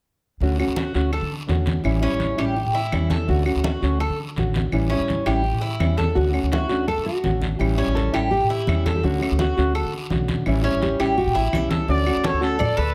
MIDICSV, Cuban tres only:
0, 0, Header, 1, 2, 480
1, 0, Start_track
1, 0, Key_signature, 2, "major"
1, 0, Tempo, 358209
1, 549, Time_signature, 4, 2, 24, 8
1, 17344, End_track
2, 0, Start_track
2, 0, Title_t, "Cuban tres"
2, 0, Program_c, 0, 25
2, 1032, Note_on_c, 0, 66, 59
2, 1498, Note_off_c, 0, 66, 0
2, 1512, Note_on_c, 0, 69, 59
2, 1745, Note_off_c, 0, 69, 0
2, 2716, Note_on_c, 0, 61, 79
2, 3183, Note_off_c, 0, 61, 0
2, 3194, Note_on_c, 0, 67, 71
2, 3663, Note_off_c, 0, 67, 0
2, 3680, Note_on_c, 0, 64, 64
2, 4146, Note_off_c, 0, 64, 0
2, 4163, Note_on_c, 0, 69, 64
2, 4395, Note_off_c, 0, 69, 0
2, 4875, Note_on_c, 0, 66, 60
2, 5346, Note_off_c, 0, 66, 0
2, 5364, Note_on_c, 0, 69, 67
2, 5598, Note_off_c, 0, 69, 0
2, 6562, Note_on_c, 0, 61, 81
2, 7032, Note_off_c, 0, 61, 0
2, 7049, Note_on_c, 0, 67, 69
2, 7516, Note_off_c, 0, 67, 0
2, 7522, Note_on_c, 0, 64, 69
2, 7994, Note_off_c, 0, 64, 0
2, 8009, Note_on_c, 0, 69, 60
2, 8244, Note_off_c, 0, 69, 0
2, 8741, Note_on_c, 0, 66, 61
2, 9204, Note_off_c, 0, 66, 0
2, 9220, Note_on_c, 0, 69, 62
2, 9451, Note_off_c, 0, 69, 0
2, 10425, Note_on_c, 0, 61, 78
2, 10887, Note_off_c, 0, 61, 0
2, 10904, Note_on_c, 0, 67, 81
2, 11366, Note_off_c, 0, 67, 0
2, 11390, Note_on_c, 0, 64, 66
2, 11849, Note_off_c, 0, 64, 0
2, 11873, Note_on_c, 0, 69, 69
2, 12098, Note_off_c, 0, 69, 0
2, 12590, Note_on_c, 0, 66, 65
2, 13048, Note_off_c, 0, 66, 0
2, 13064, Note_on_c, 0, 69, 64
2, 13292, Note_off_c, 0, 69, 0
2, 14256, Note_on_c, 0, 61, 72
2, 14717, Note_off_c, 0, 61, 0
2, 14735, Note_on_c, 0, 67, 79
2, 15196, Note_off_c, 0, 67, 0
2, 15208, Note_on_c, 0, 64, 75
2, 15671, Note_off_c, 0, 64, 0
2, 15686, Note_on_c, 0, 69, 69
2, 15917, Note_off_c, 0, 69, 0
2, 16401, Note_on_c, 0, 69, 69
2, 16862, Note_off_c, 0, 69, 0
2, 16870, Note_on_c, 0, 74, 70
2, 17103, Note_off_c, 0, 74, 0
2, 17112, Note_on_c, 0, 69, 80
2, 17344, Note_off_c, 0, 69, 0
2, 17344, End_track
0, 0, End_of_file